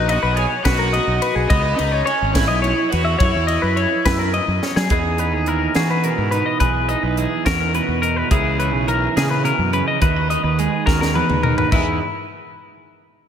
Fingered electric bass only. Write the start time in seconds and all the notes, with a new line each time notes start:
Already playing: A#1
0.23 B1
0.65 B1
1.07 B1
1.36 B1
1.50 C#2
1.79 C#2
2.22 G#1
2.50 B1
2.93 E2
3.20 F#2
3.35 E2
3.63 F#2
4.06 F#2
4.48 F#2
4.76 F#3
4.91 E2
5.33 D#2
5.76 E3
6.18 G#2
6.61 B1
7.03 B1
7.46 E2
7.88 E2
8.31 C#2
8.73 B1
9.17 C#3
9.59 F#2
10.02 D#2
10.44 D#2
10.87 D#2
11.30 D#2
11.72 E2